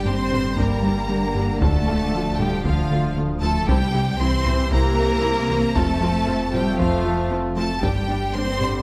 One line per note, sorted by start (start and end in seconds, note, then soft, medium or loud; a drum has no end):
0.00 1.63 G1 medium
0.00 3.64 D3 loud
0.00 1.57 G3 medium
0.00 1.58 G3 medium
0.00 3.51 D4 medium
0.05 0.21 G2 medium
0.05 0.53 G2 medium
0.05 0.13 G3 medium
0.05 0.21 A#3 medium
0.05 0.58 C4 loud
0.05 0.13 D4 medium
0.05 0.59 C5 loud
0.05 0.58 C6 loud
0.31 0.47 G2 medium
0.31 0.40 G3 medium
0.31 0.39 D4 medium
0.31 0.47 G4 medium
0.31 taiko low-mid medium
0.57 0.73 G2 loud
0.57 1.04 G2 medium
0.57 0.65 G3 medium
0.57 0.73 G3 loud
0.57 1.59 A#3 medium
0.57 0.65 D4 medium
0.57 1.62 A#4 medium
0.57 1.62 A#5 loud
0.57 taiko medium
0.83 0.99 G3 medium
0.83 0.92 G3 medium
0.83 0.99 D4 medium
0.83 0.92 D4 medium
1.09 1.56 G2 loud
1.09 1.25 G3 medium
1.09 1.18 G3 medium
1.09 1.17 D4 medium
1.09 1.25 D4 medium
1.35 1.51 G2 medium
1.35 1.44 G3 medium
1.35 1.51 A#3 medium
1.35 1.44 D4 medium
1.60 3.71 D1 medium
1.60 1.77 D2 loud
1.60 2.07 D2 medium
1.60 1.77 D3 loud
1.60 3.65 F3 loud
1.60 2.39 A3 loud
1.60 3.51 A3 medium
1.60 1.70 A3 medium
1.60 1.70 F4 medium
1.60 2.38 A4 medium
1.60 2.37 A5 loud
1.60 taiko loud
1.87 2.03 D3 medium
1.87 1.95 A3 medium
1.87 2.03 A3 medium
1.87 1.95 F4 medium
2.13 2.59 D2 medium
2.13 2.29 D2 medium
2.13 2.29 F3 medium
2.13 2.21 A3 medium
2.13 2.21 F4 medium
2.38 2.55 D2 medium
2.38 2.65 G3 loud
2.38 2.47 A3 medium
2.38 2.55 D4 medium
2.38 2.47 F4 medium
2.38 2.65 G4 medium
2.38 2.65 G5 loud
2.38 taiko low-mid medium
2.64 3.10 D2 medium
2.64 2.80 D2 loud
2.64 2.80 D3 loud
2.64 3.15 F3 medium
2.64 2.72 A3 medium
2.64 2.73 F4 medium
2.64 3.17 F4 medium
2.64 3.16 F5 loud
2.64 taiko medium
2.90 3.06 D3 medium
2.90 3.06 A3 medium
2.90 2.99 A3 medium
2.90 3.00 F4 medium
3.16 3.62 D2 loud
3.16 3.32 D3 medium
3.16 3.25 A3 medium
3.16 3.33 A3 medium
3.16 3.24 F4 medium
3.42 3.58 D2 medium
3.42 3.58 F3 medium
3.42 3.66 A3 loud
3.42 3.51 A3 medium
3.42 3.51 F4 medium
3.42 3.67 A4 loud
3.42 3.66 A5 loud
3.67 3.84 C2 loud
3.67 4.14 C2 loud
3.67 5.77 C2 medium
3.67 3.84 C3 loud
3.67 5.59 E3 loud
3.67 4.20 G3 loud
3.67 7.78 C4 loud
3.67 3.77 C4 loud
3.67 3.77 E4 medium
3.67 4.20 G4 medium
3.67 5.71 G4 loud
3.67 4.19 G5 loud
3.67 taiko loud
3.93 4.10 C3 medium
3.93 4.10 G3 medium
3.93 4.01 C4 medium
3.93 4.01 E4 medium
4.18 4.66 C2 loud
4.18 4.36 C2 medium
4.18 4.36 E3 medium
4.18 4.70 C4 loud
4.18 4.28 C4 medium
4.18 4.28 E4 medium
4.18 4.71 C5 loud
4.18 4.72 C6 loud
4.45 4.61 C2 medium
4.45 4.62 C4 medium
4.45 4.54 C4 medium
4.45 4.54 E4 medium
4.45 taiko low-mid medium
4.71 4.87 C2 loud
4.71 5.17 C2 medium
4.71 4.88 C3 loud
4.71 5.73 A#3 loud
4.71 4.79 C4 medium
4.71 4.79 E4 medium
4.71 5.75 A#4 loud
4.71 5.73 A#5 loud
4.71 taiko medium
4.98 5.13 C3 medium
4.98 5.13 G3 medium
4.98 5.06 C4 medium
4.98 5.06 E4 medium
5.23 5.69 C2 loud
5.23 5.39 C3 medium
5.23 5.40 G3 medium
5.23 5.31 C4 medium
5.23 5.31 E4 medium
5.49 5.65 C2 medium
5.49 5.65 E3 medium
5.49 5.57 C4 medium
5.49 5.57 E4 medium
5.75 7.84 F1 medium
5.75 5.91 F2 loud
5.75 6.21 F2 loud
5.75 5.91 F3 loud
5.75 7.79 F3 loud
5.75 6.53 A3 loud
5.75 7.79 A3 loud
5.75 5.84 C4 medium
5.75 7.78 F4 loud
5.75 5.84 F4 medium
5.75 6.53 A4 loud
5.75 6.53 A5 loud
5.75 taiko loud
6.01 6.17 F3 medium
6.01 6.09 C4 medium
6.01 6.17 C4 medium
6.01 6.09 F4 medium
6.26 6.42 F2 medium
6.26 6.73 F2 loud
6.26 6.42 A3 medium
6.26 6.35 C4 medium
6.26 6.35 F4 medium
6.52 6.68 F2 medium
6.52 6.78 G3 loud
6.52 6.62 C4 medium
6.52 6.69 F4 medium
6.52 6.62 F4 medium
6.52 6.78 G4 medium
6.52 6.79 G5 loud
6.52 taiko low-mid medium
6.78 6.94 F2 loud
6.78 7.25 F2 loud
6.78 7.31 F3 medium
6.78 6.94 F3 loud
6.78 6.88 C4 medium
6.78 7.30 F4 medium
6.78 6.89 F4 medium
6.78 7.30 F5 loud
6.78 taiko medium
7.04 7.20 F3 medium
7.04 7.21 C4 medium
7.04 7.14 C4 medium
7.04 7.14 F4 medium
7.31 7.76 F2 loud
7.31 7.46 F3 medium
7.31 7.46 C4 medium
7.31 7.40 C4 medium
7.31 7.40 F4 medium
7.56 7.72 F2 medium
7.56 7.80 A3 loud
7.56 7.72 A3 medium
7.56 7.64 C4 medium
7.56 7.64 F4 medium
7.56 7.81 A4 medium
7.56 7.81 A5 loud
7.81 8.82 G1 medium
7.81 7.98 G2 loud
7.81 8.28 G2 medium
7.81 8.82 D3 loud
7.81 7.97 G3 loud
7.81 8.33 G3 medium
7.81 8.82 G3 loud
7.81 7.91 G3 medium
7.81 8.82 D4 loud
7.81 7.92 D4 medium
7.81 8.82 G4 loud
7.81 8.34 G4 medium
7.81 8.34 G5 loud
7.81 taiko loud
8.08 8.24 G3 medium
8.08 8.17 G3 medium
8.08 8.24 D4 medium
8.08 8.17 D4 medium
8.33 8.49 G2 medium
8.33 8.80 G2 loud
8.33 8.43 G3 medium
8.33 8.49 A#3 medium
8.33 8.82 C4 loud
8.33 8.44 D4 medium
8.33 8.82 C5 loud
8.33 8.82 C6 loud
8.60 8.75 G2 medium
8.60 8.69 G3 medium
8.60 8.69 D4 medium
8.60 8.75 G4 medium
8.60 taiko low-mid medium